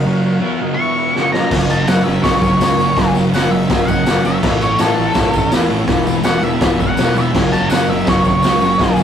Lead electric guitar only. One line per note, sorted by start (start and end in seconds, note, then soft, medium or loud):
0.75 1.29 C#6 loud
1.32 1.50 A#5 loud
1.70 1.88 A5 loud
1.88 2.04 F#5 medium
2.04 2.22 E5 medium
2.23 2.38 C#5 loud
2.39 3.11 C#5 loud
3.35 3.51 F#5 loud
3.51 3.88 E5 loud
3.88 4.23 F#5 medium
4.26 4.60 E5 loud
4.62 4.79 C#5 medium
4.80 5.50 A4 loud
6.25 6.44 F#5 medium
6.44 6.78 E5 medium
6.82 7.16 F#5 medium
7.18 7.34 E5 medium
7.52 7.70 A5 medium
7.69 7.89 F#5 loud
7.89 8.07 E5 medium
8.09 8.25 C#5 loud
8.28 8.97 C#5 medium